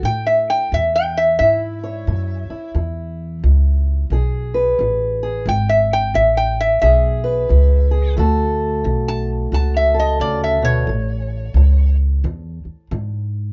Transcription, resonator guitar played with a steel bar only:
0.05 0.26 G5 loud
0.27 0.48 E5 medium
0.50 0.71 G5 loud
0.74 0.95 E5 medium
0.96 1.17 G5 medium
1.17 1.38 E5 medium
1.39 2.71 E5 medium
5.49 5.70 G5 loud
5.69 5.92 E5 medium
5.93 6.15 G5 medium
6.15 6.37 E5 medium
6.37 6.59 G5 medium
6.61 6.80 E5 medium
6.82 8.14 E5 medium
9.08 9.30 A5 medium
9.54 9.76 A5 medium
9.77 9.98 E5 medium
10.00 10.21 D#5 medium
10.21 10.43 D5 medium
10.44 10.65 E5 medium
10.65 11.97 C#5 loud

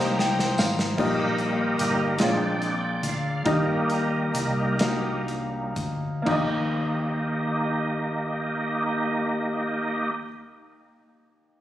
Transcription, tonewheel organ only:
0.00 0.14 G3 soft
0.00 0.14 A#3 soft
0.00 0.15 D#4 medium
0.00 0.54 G5 medium
0.00 0.55 A#5 medium
0.00 0.55 D#6 loud
0.98 2.16 G3 soft
0.98 2.16 A#3 soft
0.98 2.16 D#4 medium
0.98 2.16 G4 medium
0.98 2.16 A#4 medium
0.98 2.24 D#5 medium
2.19 2.74 G#3 soft
2.19 2.75 C4 soft
2.19 2.75 D4 medium
2.19 3.42 D5 medium
2.19 2.95 G5 medium
2.96 3.03 G5 medium
3.04 3.48 F5 medium
3.45 4.76 G3 soft
3.45 4.76 A#3 soft
3.45 4.76 D#4 soft
3.45 5.24 G4 soft
3.45 5.24 A#4 soft
3.45 5.24 D#5 medium
5.28 5.72 G3 soft
5.28 5.73 A#3 soft
5.28 5.73 D#4 soft
6.27 10.10 A#3 medium
6.27 10.10 D#4 medium
6.27 10.10 G4 medium
6.27 10.10 D#5 medium

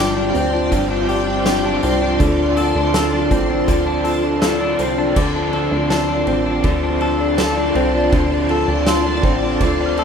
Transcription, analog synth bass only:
0.00 0.32 G1 loud
0.35 0.70 D2 medium
0.72 1.79 G1 medium
1.84 2.19 C2 medium
2.20 2.73 D2 loud
2.75 3.28 D2 loud
3.31 3.66 A1 medium
3.68 4.75 D2 medium
4.79 5.15 C2 loud
5.16 5.69 D2 loud
5.71 6.25 D2 loud
6.27 6.63 A1 medium
6.64 7.72 D2 medium
7.75 8.11 C2 loud
8.13 8.65 D2 medium
8.68 9.21 D2 loud
9.23 9.59 A1 medium
9.61 10.04 D2 loud

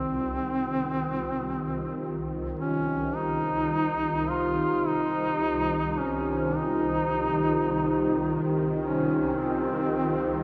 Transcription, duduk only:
0.00 2.26 C4 loud
2.59 3.17 C#4 medium
3.16 4.30 D#4 loud
4.29 4.89 F4 loud
4.87 5.99 D#4 loud
5.98 6.57 C#4 medium
6.55 8.53 D#4 loud
8.80 9.32 C#4 medium
9.36 10.43 C4 medium

